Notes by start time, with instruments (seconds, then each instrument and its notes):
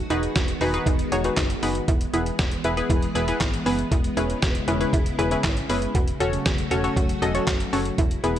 Already playing: string machine D#3 G#3 B3 F#4
0.10 fm bass E1, synth pluck D#4 F#4 G#4 B4, synth arpeggio sound D#4, closed hi-hat
0.23 closed hi-hat
0.36 fm bass E1, synth arpeggio sound F#4, kick, snare, closed hi-hat
0.48 closed hi-hat
0.61 fm bass E1, synth arpeggio sound D#4, synth pluck D#4 F#4 G#4 B4, open hi-hat
0.74 synth pluck D#4 F#4 G#4 B4, closed hi-hat
0.86 fm bass E1, synth arpeggio sound D#4, kick, closed hi-hat
0.99 closed hi-hat
1.12 fm bass E1, synth pluck D#4 F#4 G#4 C#5, synth arpeggio sound F#4, closed hi-hat
1.24 synth pluck D#4 F#4 G#4 B4, closed hi-hat
1.37 fm bass F#1, synth arpeggio sound D#4, kick, snare, clap, closed hi-hat
1.50 closed hi-hat
1.63 fm bass F#1, synth arpeggio sound B3, synth pluck D#4 F#4 G#4 B4, open hi-hat
1.75 closed hi-hat
1.88 fm bass E1, string machine E3 G#3 B3 G#4, synth arpeggio sound E4, kick, closed hi-hat
2.01 closed hi-hat
2.13 fm bass E1, synth pluck B3 E4 G#4 B4, synth arpeggio sound E4, closed hi-hat
2.26 closed hi-hat
2.39 fm bass E1, synth arpeggio sound F#4, kick, snare, closed hi-hat
2.51 closed hi-hat
2.64 fm bass E1, synth pluck B3 E4 G#4 B4, synth arpeggio sound E4, closed hi-hat
2.77 synth pluck B3 E4 G#4 B4, closed hi-hat
2.90 fm bass E1, synth arpeggio sound E4, kick, closed hi-hat
3.02 closed hi-hat
3.15 fm bass E1, synth pluck B3 E4 G#4 B4, synth arpeggio sound G#4, closed hi-hat
3.28 synth pluck B3 E4 G#4 B4, closed hi-hat
3.41 fm bass G#1, synth arpeggio sound E4, kick, snare, clap, closed hi-hat
3.54 closed hi-hat
3.66 fm bass F#1, synth pluck B3 E4 G#4 B4, synth arpeggio sound B3, open hi-hat
3.79 closed hi-hat
3.92 fm bass E1, string machine C#3 E4, synth arpeggio sound E4, kick, closed hi-hat
4.04 closed hi-hat
4.17 fm bass E1, synth pluck C#4 E4 G#4 B4, synth arpeggio sound E4, closed hi-hat
4.30 closed hi-hat
4.42 fm bass E1, synth arpeggio sound F#4, kick, snare, closed hi-hat
4.55 closed hi-hat
4.68 fm bass E1, synth pluck C#4 E4 G#4 B4, synth arpeggio sound E4, closed hi-hat
4.80 synth pluck C#4 E4 G#4 B4, closed hi-hat
4.93 fm bass E1, synth arpeggio sound E4, kick, closed hi-hat
5.06 closed hi-hat
5.19 fm bass E1, synth pluck C#4 E4 G#4 B4, synth arpeggio sound G#4, closed hi-hat
5.31 synth pluck C#4 E4 G#4 B4, closed hi-hat
5.44 fm bass G#1, synth arpeggio sound E4, kick, snare, clap, closed hi-hat
5.57 closed hi-hat
5.69 fm bass F#1, synth arpeggio sound B3, synth pluck C#4 E4 G#4 B4, open hi-hat
5.82 closed hi-hat
5.95 fm bass E1, string machine F#3 A3 F#4, synth arpeggio sound F#4, kick, closed hi-hat
6.08 closed hi-hat
6.20 fm bass E1, synth pluck C#4 F#4 A4 C#5, synth arpeggio sound F#4, closed hi-hat
6.33 closed hi-hat
6.46 fm bass E1, synth arpeggio sound G#4, kick, snare, closed hi-hat
6.58 closed hi-hat
6.71 fm bass E1, synth pluck C#4 F#4 A4 C#5, synth arpeggio sound F#4, closed hi-hat
6.84 synth pluck C#4 F#4 A4 C#5, closed hi-hat
6.96 fm bass E1, synth arpeggio sound F#4, kick, closed hi-hat
7.09 closed hi-hat
7.22 fm bass E1, synth pluck C#4 F#4 A4 D#5, synth arpeggio sound A4, closed hi-hat
7.35 synth pluck C#4 F#4 A4 C#5, closed hi-hat
7.47 fm bass F#1, synth arpeggio sound F#4, kick, snare, clap, closed hi-hat
7.60 closed hi-hat
7.73 fm bass F#1, synth pluck C#4 F#4 A4 C#5, synth arpeggio sound C#4, open hi-hat
7.85 closed hi-hat
7.98 fm bass E1, string machine B2 E3 G#3 E4, synth arpeggio sound E4, kick, closed hi-hat
8.11 closed hi-hat
8.24 fm bass E1, synth pluck B3 E4 G#4 B4, synth arpeggio sound E4, closed hi-hat